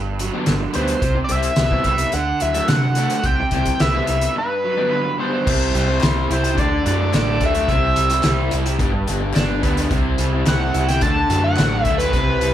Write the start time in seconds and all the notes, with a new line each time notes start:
Already playing: G1 G2
0.19 F#3, closed hi-hat
0.34 D3 G3 B3 D4
0.46 G1 D3, snare, closed hi-hat
0.60 muted overdriven electric guitar stroke
0.73 D2 D3 G3 B3 D4 C5, closed hi-hat
0.88 closed hi-hat
1.02 C2 C3, kick, closed hi-hat
1.15 muted overdriven electric guitar stroke
1.24 D5
1.29 C2 C3 G3 C4 E4 E5, closed hi-hat
1.43 closed hi-hat
1.56 C2 B3, muted overdriven electric guitar stroke, snare, closed hi-hat
1.71 C3 G3 C4 E4, kick
1.84 C2 G3 E5, kick, closed hi-hat
1.98 closed hi-hat
2.12 D2 D3 F#5, muted overdriven electric guitar stroke, closed hi-hat
2.40 D2 F#3 E5, closed hi-hat
2.54 D3 F#3 A3 D4, closed hi-hat
2.68 C3 D3 F#5, snare, closed hi-hat
2.84 muted overdriven electric guitar stroke
2.95 D3 F#3 A3 D4, closed hi-hat
3.10 closed hi-hat
3.24 C2 C3 G5, kick, closed hi-hat
3.40 muted overdriven electric guitar stroke
3.51 C2 C3 G3 C4 E4 G5, kick, closed hi-hat
3.65 kick, closed hi-hat
3.80 C2 B3 E5, muted overdriven electric guitar stroke, snare, closed hi-hat
3.95 C3 G3 C4 E4
4.07 C2 G3 E5, closed hi-hat
4.21 closed hi-hat
4.35 G2 B4, muted overdriven electric guitar stroke
4.64 F#3
4.77 D3 G3 B3 D4
4.91 D3
5.05 muted overdriven electric guitar stroke
5.19 D3 G3 B3 D4 C5
5.45 C2 C3 G3 C4 E4, kick, crash
5.75 C2 G3, closed hi-hat
5.86 G3 C4 E4
6.00 C2 C3 G3 C4 E4, snare, clap, closed hi-hat
6.28 C2 C3 G3 C4 E4, closed hi-hat
6.33 C5
6.44 muted overdriven electric guitar stroke, closed hi-hat
6.55 D2 D3 F#3 A3, kick, closed hi-hat
6.59 D4 D5
6.71 muted overdriven electric guitar stroke
6.84 F#2 D3 F#3 A3 D4, closed hi-hat
6.88 D5
6.99 F#3 A3 D4
7.13 A1 D3 F#3 A3 D4, snare, clap, closed hi-hat
7.40 D2 D3 F#3 A3 D4, kick, closed hi-hat
7.45 E5
7.54 F#3 A3 D4, closed hi-hat
7.68 C2 C3 G3 C4 E4, kick, closed hi-hat
7.96 C2 G3, closed hi-hat
8.10 C4 E4, closed hi-hat
8.14 G3
8.23 C2 C3 G3 C4 E4, snare, clap, closed hi-hat
8.51 C2 C3 G3 C4 E4, closed hi-hat
8.66 muted overdriven electric guitar stroke, closed hi-hat
8.78 G1 G2 D3 G3 B3 D4, kick, closed hi-hat
8.93 muted overdriven electric guitar stroke
9.07 G1 D3 G3 B3 D4, closed hi-hat
9.21 G3 B3 D4
9.34 G1 G2 D3 G3 B3 D4, snare, clap, closed hi-hat
9.62 D2 D3 G3 B3 D4, kick, closed hi-hat
9.77 G3 B3 D4, closed hi-hat
9.91 C2 C3 G3 C4, kick, closed hi-hat
9.95 E4
10.18 C2 G3, closed hi-hat
10.33 G3 C4 E4
10.46 C3 G3 C4 E4 F#5, snare, clap, closed hi-hat
10.74 C2 C3 G3 C4 E4, closed hi-hat
10.78 E4
10.88 G5, muted overdriven electric guitar stroke, snare, closed hi-hat
11.01 D2 D3 F#3 A3 A5, kick, closed hi-hat
11.06 D4
11.17 muted overdriven electric guitar stroke
11.30 F#2 D3 F#3 A3 D4, closed hi-hat
11.43 F#3 A3 D4 F#5
11.57 A1 D3 F#3 A3 D4, snare, clap, closed hi-hat
11.61 D4
11.84 D2 D3 F#3 E5, kick, closed hi-hat
11.89 A3 D4
11.98 D4 B4, closed hi-hat
12.03 F#3 A3
12.13 C2 C3 G3 C4 E4, kick, closed hi-hat
12.40 C2 G3, closed hi-hat